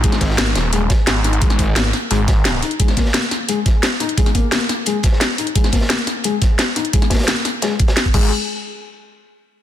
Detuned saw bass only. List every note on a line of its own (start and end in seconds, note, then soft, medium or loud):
0.04 0.20 G#1 loud
0.21 0.37 G#1 medium
0.38 0.54 G#1 loud
0.55 0.89 D#1 loud
1.07 1.40 G#1 loud
1.42 1.92 G#1 medium
2.11 2.61 G#1 loud
8.14 8.30 G#1 loud